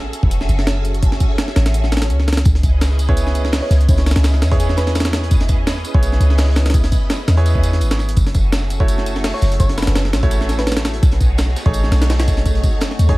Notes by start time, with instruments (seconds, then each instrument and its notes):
Already playing: 808-style bass A1, string machine C#4 F#4 G#4 A4 E5
0.13 closed hi-hat
0.23 808-style bass E1, string machine C#4 F#4 G#4 A4 E5, kick
0.31 closed hi-hat
0.41 snare
0.49 808-style bass F#1, closed hi-hat
0.59 snare
0.67 snare, closed hi-hat
0.85 closed hi-hat
0.94 closed hi-hat
1.03 string machine C#4 F#4 G#4 A4 E5, kick, closed hi-hat
1.12 snare
1.20 kick, closed hi-hat
1.38 snare, closed hi-hat
1.48 snare
1.56 808-style bass A1, snare, closed hi-hat
1.66 snare, closed hi-hat
1.74 closed hi-hat, swell
1.84 snare
1.92 snare, closed hi-hat
1.97 snare, closed hi-hat
2.02 snare, closed hi-hat
2.10 808-style bass C#2, closed hi-hat
2.20 snare
2.28 snare, closed hi-hat
2.33 snare, closed hi-hat
2.37 snare, closed hi-hat
2.45 808-style bass C#2, string machine C#4 E4 G#4 B4 D#5, kick, closed hi-hat, tambourine
2.55 snare, closed hi-hat
2.63 kick, closed hi-hat, tambourine
2.81 snare, closed hi-hat, tambourine
2.91 snare
2.99 closed hi-hat, tambourine
3.09 grand piano B3 E4 G#4 C#5, string machine C#4 E4 G#4 B4 D#5, kick
3.17 closed hi-hat, tambourine
3.27 snare
3.35 closed hi-hat, tambourine
3.45 snare
3.52 snare, closed hi-hat, open hi-hat
3.62 soft synth lead C#5
3.70 808-style bass C#2, snare, closed hi-hat, tambourine
3.81 closed hi-hat
3.88 808-style bass C#2, string machine C#4 E4 G#4 B4 D#5, soft synth lead C#5, kick, closed hi-hat, tambourine
3.97 snare, closed hi-hat
4.06 snare, closed hi-hat, tambourine
4.11 snare, closed hi-hat
4.16 808-style bass C#2, snare, closed hi-hat
4.23 snare, closed hi-hat, tambourine
4.34 snare
4.42 808-style bass E2, snare, closed hi-hat, tambourine
4.51 grand piano B3 E4 G#4 C#5, soft synth lead G#4, kick, closed hi-hat
4.60 soft synth lead G#4, closed hi-hat, tambourine
4.69 snare
4.77 soft synth lead B4, snare, closed hi-hat, tambourine
4.87 soft synth lead B4, snare, closed hi-hat
4.95 snare, closed hi-hat, tambourine
5.00 snare, closed hi-hat
5.05 snare, closed hi-hat
5.13 snare, closed hi-hat, tambourine
5.24 closed hi-hat
5.31 string machine C#4 E4 G#4 B4 D#5, kick, closed hi-hat, tambourine
5.40 snare, closed hi-hat
5.48 kick, closed hi-hat, tambourine
5.67 snare, closed hi-hat, tambourine
5.76 snare
5.84 closed hi-hat, tambourine
5.94 808-style bass B1, grand piano B3 E4 G#4 C#5, string machine C#4 E4 G#4 B4 D#5, kick
6.03 closed hi-hat, tambourine
6.12 snare
6.20 808-style bass C#2, closed hi-hat, tambourine
6.30 snare
6.38 snare, closed hi-hat, open hi-hat
6.56 snare, closed hi-hat, tambourine
6.66 snare, closed hi-hat
6.70 snare, closed hi-hat
6.74 string machine C#4 E4 G#4 B4 D#5, kick, closed hi-hat, tambourine
6.84 snare, closed hi-hat
6.92 kick, closed hi-hat, tambourine
7.10 snare, closed hi-hat, tambourine
7.28 808-style bass E2, snare, closed hi-hat, tambourine
7.37 grand piano B3 E4 G#4 C#5, closed hi-hat
7.46 closed hi-hat, tambourine
7.55 kick
7.63 snare, closed hi-hat, tambourine
7.73 snare, closed hi-hat
7.81 808-style bass G#1, closed hi-hat, tambourine
7.91 snare, closed hi-hat
7.99 snare, tambourine
8.09 closed hi-hat
8.16 808-style bass F#1, string machine C#4 F#4 G#4 A4 E5, kick, closed hi-hat, tambourine
8.27 snare, closed hi-hat
8.34 kick, closed hi-hat, tambourine
8.53 snare, closed hi-hat, tambourine
8.62 snare
8.70 closed hi-hat, tambourine
8.80 grand piano A3 E4 F#4 C#5, string machine C#4 F#4 G#4 A4 E5, kick
8.88 closed hi-hat, tambourine
8.98 snare
9.06 closed hi-hat, tambourine
9.16 snare
9.24 snare, closed hi-hat, open hi-hat
9.34 soft synth lead C#5
9.41 808-style bass F#1, snare, closed hi-hat, tambourine
9.52 closed hi-hat
9.60 808-style bass F#1, string machine C#4 F#4 G#4 A4 E5, soft synth lead C#5, kick, closed hi-hat, tambourine
9.69 snare, closed hi-hat
9.78 soft synth lead B4, snare, closed hi-hat, tambourine
9.82 snare, closed hi-hat
9.87 808-style bass F#1, snare, closed hi-hat
9.96 snare, closed hi-hat, tambourine
10.05 snare
10.13 808-style bass A1, snare, closed hi-hat, tambourine
10.23 grand piano A3 E4 F#4 C#5, kick, closed hi-hat
10.31 closed hi-hat, tambourine
10.41 snare
10.48 snare, closed hi-hat, tambourine
10.59 soft synth lead B4, snare, closed hi-hat
10.67 soft synth lead B4, snare, closed hi-hat, tambourine
10.72 snare, closed hi-hat
10.77 snare, closed hi-hat
10.85 snare, closed hi-hat, tambourine
10.94 closed hi-hat
11.03 808-style bass B1, string machine A3 D#4 F#4 G#4 C#5, kick, closed hi-hat, tambourine
11.11 snare, closed hi-hat
11.20 kick, closed hi-hat, tambourine
11.38 snare, closed hi-hat, tambourine
11.48 snare
11.56 snare, closed hi-hat, tambourine
11.66 808-style bass A1, grand piano A3 D#4 G#4 C#5, string machine A3 D#4 F#4 G#4 C#5, kick
11.73 closed hi-hat, tambourine
11.84 snare
11.92 808-style bass B1, snare, closed hi-hat, tambourine
12.02 snare, closed hi-hat
12.09 snare, closed hi-hat, open hi-hat
12.20 snare, closed hi-hat
12.27 kick, snare, closed hi-hat, tambourine
12.37 snare, closed hi-hat
12.45 string machine A3 D#4 F#4 G#4 C#5, kick, closed hi-hat, tambourine
12.55 closed hi-hat
12.63 kick, closed hi-hat, tambourine
12.81 snare, closed hi-hat, tambourine
12.91 snare
12.99 808-style bass D#2, closed hi-hat, tambourine
13.09 grand piano A3 D#4 G#4 C#5, kick, closed hi-hat